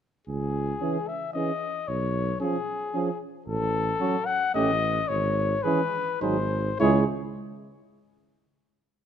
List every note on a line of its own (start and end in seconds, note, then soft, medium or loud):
0.27 0.73 C#2 medium
0.27 1.09 G#4 medium
0.81 0.98 E3 soft
0.81 0.97 C#4 soft
0.81 0.97 G#4 soft
1.08 1.33 E5 medium
1.34 1.51 E3 soft
1.34 1.51 C#4 soft
1.34 1.52 G#4 soft
1.34 1.89 D#5 medium
1.88 2.32 B1 medium
1.88 2.40 C#5 medium
2.40 2.58 F3 soft
2.40 2.56 C#4 soft
2.40 3.18 G#4 medium
2.40 2.57 G#4 soft
2.94 3.11 F3 soft
2.94 3.10 C#4 soft
2.94 3.10 G#4 soft
3.46 3.92 A1 medium
3.46 4.27 A4 medium
4.00 4.16 F#3 medium
4.00 4.16 C#4 soft
4.00 4.16 F#4 soft
4.26 4.54 F#5 medium
4.54 5.00 A1 medium
4.54 4.70 A3 medium
4.54 4.72 C#4 medium
4.54 4.70 G4 medium
4.54 5.09 D#5 medium
5.08 5.55 G#1 medium
5.08 5.64 C#5 medium
5.63 5.82 E3 medium
5.63 5.82 C#4 medium
5.63 5.80 G#4 medium
5.63 6.20 B4 medium
6.21 6.71 G#1 medium
6.21 6.37 F#3 medium
6.21 6.37 D#4 medium
6.21 6.38 G#4 medium
6.21 6.79 C5 medium
6.80 7.05 C#2 medium
6.80 7.04 G#3 medium
6.80 7.04 E4 medium
6.80 7.05 G#4 medium
6.80 7.04 C#5 medium